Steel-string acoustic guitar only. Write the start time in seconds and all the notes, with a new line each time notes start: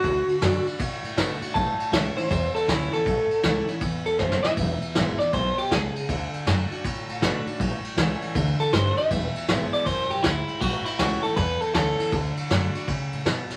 0.03 D3
0.41 D3 A3 D4 F#4
0.65 D4 F#4
0.79 A2
1.16 D3 A3 D4 F#4
1.41 D4 F#4
1.55 A2
1.92 E3 A3 C#4 E4
2.16 C#4 E4
2.29 E2
2.66 E3 A3 C#4 E4
2.91 C#4 E4
3.05 A2
3.43 E3 A3 C#4 E4
3.67 C#4 E4
3.81 E2
4.18 E3 A3 C#4 E4
4.44 C#4 E4
4.57 E2
4.95 E3 G#3 B3 E4
5.20 B3 E4
5.34 B2
5.72 C#3
6.09 D3
6.46 D3 A3 D4 F#4
6.71 D4 F#4
6.85 A2
7.21 D3 A3 D4 F#4
7.46 D4 F#4
7.61 A2
7.98 E3 A3 C#4 E4
8.35 D3
8.73 D3 A3 D4 F#4
8.97 D4 F#4
9.11 E2
9.48 E3 G#3 B3 E4
9.86 F#2
10.23 G#2
10.61 A2
10.99 E3 A3 C#4 E4
11.23 C#4 E4
11.37 E2
11.73 E3 A3 C#4 E4
11.98 C#4 E4
12.12 D3
12.49 D3 A3 D4 F#4
12.75 D4 F#4
12.88 C#3
13.25 B2